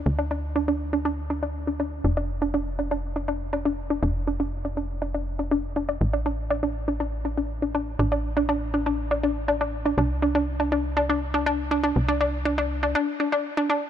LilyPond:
<<
  \new Staff \with { instrumentName = "Synth arpeggio sound" } { \time 4/4 \key d \minor \tempo 4 = 121 r16 d'16 d'16 r16 d'16 d'16 r16 d'16 d'16 r16 d'16 d'16 r16 d'16 d'16 r16 | d'16 d'16 r16 d'16 d'16 r16 d'16 d'16 r16 d'16 d'16 r16 d'16 d'16 r16 d'16 | d'16 r16 d'16 d'16 r16 d'16 d'16 r16 d'16 d'16 r16 d'16 d'16 r16 d'16 d'16 | r16 d'16 d'16 r16 d'16 d'16 r16 d'16 d'16 r16 d'16 d'16 r16 d'16 d'16 r16 |
d'16 d'16 r16 d'16 d'16 r16 d'16 d'16 r16 d'16 d'16 r16 d'16 d'16 r16 d'16 | d'16 r16 d'16 d'16 r16 d'16 d'16 r16 d'16 d'16 r16 d'16 d'16 r16 d'16 d'16 | r16 d'16 d'16 r16 d'16 d'16 r16 d'16 d'16 r16 d'16 d'16 r16 d'16 d'16 r16 | }
  \new Staff \with { instrumentName = "Analog synth bass" } { \clef bass \time 4/4 \key d \minor d,1 | f,,1 | f,,1 | a,,1 |
a,,1 | c,1 | c,2 r2 | }
>>